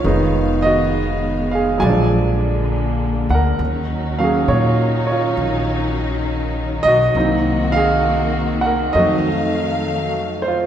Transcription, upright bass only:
X:1
M:4/4
L:1/8
Q:"Swing" 1/4=67
K:Ebdor
V:1 name="Upright bass" clef=bass
F,,,4 B,,,3 =D,, | E,,2 B,,2 B,,,3 _C,, | C,,4 F,,4 |]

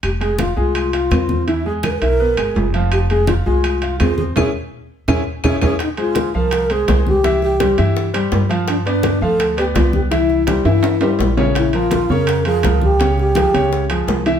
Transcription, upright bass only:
X:1
M:4/4
L:1/8
Q:1/4=167
K:Fm
V:1 name="Upright bass" clef=bass
F,,,3 C,,3 =E,,2- | =E,,3 =B,,,2 G,,, F,,,2- | F,,,3 C,,3 =E,,2 | =E,, z3 E,, z E,, E,, |
z3 C,,3 C,,2- | C,,3 G,,3 G,,2- | G,,3 =D,,3 C,,2- | C,,3 G,,3 B,,,2- |
B,,,3 F,,3 D,,2- | D,,3 D,,3 C,,2 |]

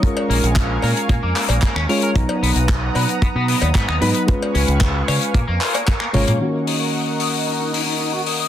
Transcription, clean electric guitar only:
X:1
M:4/4
L:1/16
Q:1/4=113
K:Ebm
V:1 name="Clean electric guitar"
z2 B, z3 B z B, B, B, B, B, D B B | z2 =B, z3 =B z B, B, B, B, B, ^D B B | z2 D z3 d z B, B, F B, B, B, B, B, | z2 E z3 e z E E E E E G e e |]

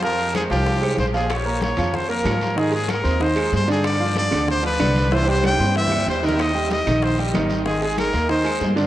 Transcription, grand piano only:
X:1
M:4/4
L:1/8
Q:1/4=189
K:Bbdor
V:1 name="Grand piano"
[F,Ff]2 [A,Ac] [F,Ff]2 [A,Ac]2 [F,Ff] | z [B,Bb]2 [F,Ff]2 [B,Bb] [F,Ff]2 | [E,Ee] [A,Aa]2 [Ccc'] [E,Ee] [A,Aa]2 [=D,=D=d]- | [=D,=D=d] [F,Ff]2 [D,Dd]2 [F,Ff] [D,Dd]2 |
[=E,=E=e] [G,Gg]2 [Ccc'] [E,Ee] [G,Gg]2 [_E,_E_e]- | [E,Ee] [G,Gg]2 [E,Ee]2 [G,Gg] [E,Ee]2 | [E,Ee] [A,Aa]2 [B,Bb] [E,Ee] [A,Aa]2 [=D,=D=d] |]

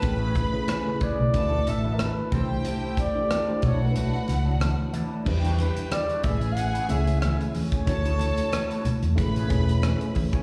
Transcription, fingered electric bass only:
X:1
M:4/4
L:1/16
Q:"Swing 16ths" 1/4=92
K:A
V:1 name="Fingered electric bass" clef=bass
A,,,3 z4 B,,, D,,2 A,,,3 z =C,,2- | =C,,3 z3 B,,,4 ^C,,3 z3 | E,,3 z3 A,,,4 C,,3 z3 | D,,3 z4 E,, A,,,2 E,,,3 z3 |]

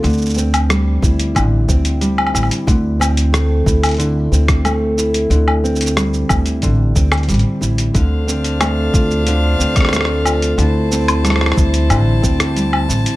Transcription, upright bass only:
X:1
M:4/4
L:1/8
Q:1/4=91
K:Cmix
V:1 name="Upright bass" clef=bass
D,,3 D,, A,,, D,,2 A,,, | D,,3 D,,2 D,,3 | D,,3 D,, A,,, D,, A,,, A,,, | D,,3 D,,2 D,,3 |
D,,3 D,, A,,, D,,2 A,,, |]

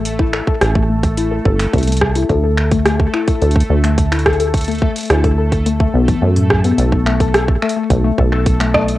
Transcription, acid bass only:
X:1
M:4/4
L:1/8
Q:1/4=107
K:Dmix
V:1 name="Acid bass" clef=bass
A,,, z A,,,3 G,,, C,,2 | D,,3 z D,, D,,3- | D,, z D,,3 B,,, F,,2 | B,,,3 z B,,, B,,,3 |]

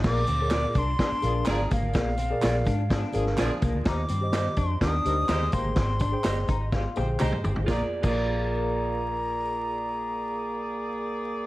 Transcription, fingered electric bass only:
X:1
M:4/4
L:1/16
Q:1/4=126
K:Bbmix
V:1 name="Fingered electric bass" clef=bass
B,,,2 D,,4 C,,2 z2 B,,,2 A,,,2 A,,,2 | B,,,4 B,,,2 A,,4 A,,,2 B,,, z C,, D,, | E,,2 G,,4 F,,2 E,,2 D,,2 E,,2 A,,,2 | A,,,4 G,,,2 A,,,4 B,,,2 C,, z G,,, A,,, |
z3 B,,,12- B,,,- | B,,,16 |]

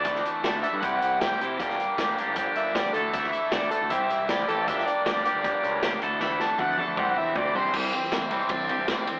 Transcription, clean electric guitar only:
X:1
M:4/4
L:1/8
Q:1/4=156
K:Clyd
V:1 name="Clean electric guitar"
[E,A,DA]2 [E,A,DA] [E,A,DA] [E,CEG]2 [E,CEG] [E,CEG] | [_B,DG]2 [B,DG] [B,DG] [B,DG]2 [B,DG] [E,A,DA] | [E,A,DA]2 [E,A,DA] [E,A,DA] [E,CEG]2 [E,CEG] [E,CEG] | [_B,DG]2 [B,DG] [B,DG] [B,DG]2 [B,DG] [E,A,DA] |
[E,A,DA]2 [E,A,DA] [E,A,DA] [E,CDG]2 [E,CDG] [E,CDG] | E, C E, C D G D C |]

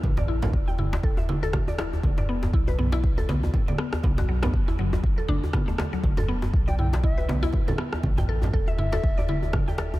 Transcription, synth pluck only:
X:1
M:4/4
L:1/16
Q:"Swing 16ths" 1/4=120
K:Em
V:1 name="Synth pluck"
z d E z2 g E z A e E A z d E z | z d B, z E B B, E z A B, z2 d B, z | B, F F, B, z E F, z2 A D z B, A, A, F, | z A B, z2 d E z E B B, E z A B, z |
z g A z A e E A z d E z2 g A z |]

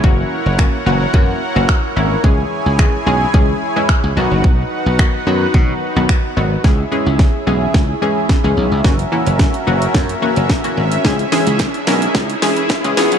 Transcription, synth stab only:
X:1
M:4/4
L:1/16
Q:1/4=109
K:C#dor
V:1 name="Synth stab"
[E,A,CF]3 z [E,A,CF] z [E,A,CF] z [E,A,CF]2 z [E,A,CF]2 z [E,A,CE] z | [E,G,CG]3 z [E,G,CG] z [E,G,CG] z [E,G,CG]2 z [E,G,CE]2 z [D,F,B,F]2- | [D,F,B,F]3 z [D,F,B,F] z [D,F,B,F] z [D,F,B,F]2 z [D,F,B,F]2 z [D,F,B,F] z | [E,G,CG] z [E,G,CG]3 z [E,G,CG]3 z [E,G,CG]2 z [E,G,CG]2 z |
[E,A,CF] z [E,A,CE]3 z [E,A,CF]3 z [E,A,CF]2 z [E,A,CF]2 z | [E,G,CG] z [E,G,CG]3 z [E,G,CA]3 z [E,G,CG]2 z [E,G,CG] [E,B,CG]2 |]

